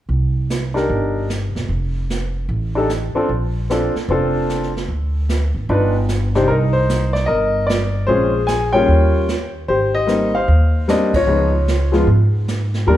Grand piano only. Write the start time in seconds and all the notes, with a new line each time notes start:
0.74 D4 D#4 G4 A#4
2.75 D4 D#4 G4 A4
3.15 C4 D4 F4 A4
3.70 C4 D4 F4 A4
4.10 C4 D4 F4 A4
5.70 D4 D#4 F4 B4
6.35 C3 D4 D#4 G4 C5
6.48 D#4 A#4
6.73 C5
7.13 D5
7.26 A#4 D#5
7.67 D5
8.07 G#3 C4 C#4 F4 G#4 C5
8.47 G#5
8.73 G3 A#3 C#4 F4 C#5 G5
9.68 G4 C5
9.95 D#5
10.07 G3 A#3 C4 D#4
10.35 C5 F5
10.88 G3 A#3 C4 D4 D#5
11.16 F4 C#5
11.27 F3 G#3 B3 D#4
11.92 F3 G#3 B3 F4
12.87 F3 G3 A#3 D4 G4 A#4